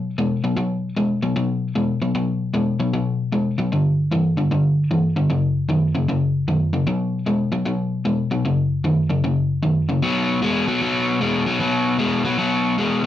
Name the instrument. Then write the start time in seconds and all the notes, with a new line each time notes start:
overdriven electric guitar
Already playing: B2 F#3
0.18 B2 G#3
0.44 B2 F#3
0.57 B2 F#3
0.97 B2 G#3
1.23 B2 F#3
1.36 B2 F#3
1.76 B2 G#3
2.02 B2 F#3
2.15 B2 F#3
2.54 B2 G#3
2.80 B2 F#3
2.93 B2 F#3
3.32 B2 G#3
3.58 B2 F#3
3.72 G2 D3
4.12 G2 E3
4.37 G2 D3
4.51 G2 D3
4.91 G2 E3
5.16 G2 D3
5.30 F#2 C#3
5.69 F#2 D#3
5.95 F#2 C#3
6.09 F#2 C#3
6.48 F#2 D#3
6.73 F#2 C#3
6.87 B2 F#3
7.26 B2 G#3
7.52 B2 F#3
7.66 B2 F#3
8.05 B2 G#3
8.31 B2 F#3
8.45 F#2 C#3
8.84 F#2 D#3
9.10 F#2 C#3
9.24 F#2 C#3
9.63 F#2 D#3
9.89 F#2 C#3
10.03 B2 F#3
10.42 B2 G#3
10.68 B2 F#3
10.81 B2 F#3
11.21 B2 G#3
11.46 B2 F#3
11.60 B2 F#3
11.99 B2 G#3
12.25 B2 F#3
12.38 B2 F#3
12.78 B2 G#3